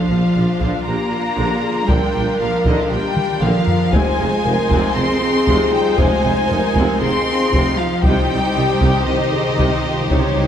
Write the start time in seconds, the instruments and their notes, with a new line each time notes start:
Already playing: cello section F3, french horn section D4, viola section D4, violin section F4 C5 F5
0.08 double bass section A#1, tuba A#1, viola section F3, french horn section F4
0.36 double bass section A#1, tuba A#1, viola section G3
0.61 double bass section A#1, tuba A#1, viola section D3, taiko
0.86 double bass section A#1, tuba A#1, viola section F3, cello section A#3, french horn section G4, violin section A#4 A#5
1.12 french horn section F4
1.37 double bass section A#1, tuba A#1, viola section D3, french horn section G4
1.60 french horn section G#4
1.86 double bass section A#1, tuba A#1, viola section D3, cello section G3, french horn section A#4, violin section G5, taiko
2.15 double bass section A#1, tuba A#1, viola section F3
2.40 tuba A#1, double bass section A#1, cello section F3, viola section G3, violin section F5
2.65 double bass section A#1, tuba A#1, viola section D3, cello section D#3, violin section D#5, taiko
2.79 cello section F3, violin section F5
2.90 double bass section A#1, tuba A#1, cello section G3, french horn section G4, violin section G5
2.94 viola section F3
3.17 taiko mid
3.42 double bass section A#1, tuba A#1, viola section D3, cello section F3, french horn section A#4, violin section F5, taiko mid
3.67 taiko low
3.92 double bass section F1, tuba F1, viola section C3 D#4, cello section G#3, violin section F4 C5 G#5, french horn section C5, taiko
4.19 double bass section F1, tuba F1, viola section D#3, french horn section G#4
4.45 double bass section F1, tuba F1, viola section F3, french horn section A#4
4.71 double bass section F1, tuba F1, viola section C3, taiko
4.96 double bass section F1, tuba F1, viola section D#3, cello section C4, french horn section G#4, violin section C6
5.20 french horn section G#4
5.47 double bass section F1, tuba F1, viola section C3, taiko
5.73 cello section G3, violin section G5
5.98 double bass section F1, tuba F1, viola section C3, cello section G#3, french horn section C5, violin section G#5, taiko
6.25 double bass section F1, tuba F1, viola section D#3
6.49 double bass section F1, tuba F1, viola section F3, french horn section A#4
6.75 double bass section F1, tuba F1, viola section C3, taiko
7.00 double bass section F1, tuba F1, viola section D#3, cello section C4, french horn section G#4, violin section C6
7.53 double bass section F1, tuba F1, viola section C3, french horn section G4, taiko
7.78 cello section F3, french horn section F4, violin section F5
8.03 double bass section C2, tuba C2, viola section C3 D#4, cello section G3, french horn section D#4, violin section G4 C5 G5, taiko
8.13 timpani C3
8.20 timpani C3
8.28 double bass section C2, tuba C2, timpani C3, viola section C3
8.35 timpani C3
8.42 timpani C3
8.51 timpani C3
8.56 tuba C2, double bass section C2, timpani C3, viola section D#3, french horn section G4
8.65 timpani C3
8.74 timpani C3
8.81 double bass section C2, tuba C2, timpani C3, viola section C3, taiko
8.89 timpani C3
9.06 double bass section C2, tuba C2, viola section C3, cello section D#3, french horn section C5, violin section D#5
9.11 timpani C3
9.18 timpani C3
9.26 timpani C3
9.32 timpani C3, french horn section G#4
9.41 timpani C3
9.48 timpani C3
9.56 double bass section C2, tuba C2, timpani C3, viola section C3, french horn section G4, taiko
9.62 timpani C3
9.70 timpani C3
9.78 timpani C3
9.84 timpani C3, french horn section F4
9.93 timpani C3
10.00 timpani C3
10.07 double bass section C2, timpani C3, viola section C3, cello section C#3, french horn section D#4, taiko, cymbal swell
10.12 tuba C2, timpani C3, violin section C#5
10.23 timpani C3
10.31 timpani C3
10.37 double bass section C2, tuba C2, viola section C3, timpani C3